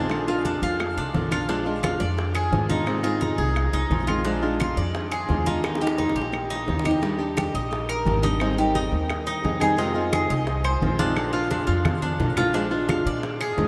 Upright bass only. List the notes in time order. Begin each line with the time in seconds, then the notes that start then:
Already playing: A#1
0.62 F2
0.97 C2
1.15 A#1
2.00 F2
2.52 G#2
3.38 C2
3.73 C2
3.90 A#1
4.76 F2
5.29 D#2
6.15 A#1
6.68 D#2
7.54 A#1
8.06 G#1
8.92 D#2
9.44 F2
10.30 C2
10.82 A#1
11.68 F2
12.20 A#1
13.06 A#2
13.57 G#2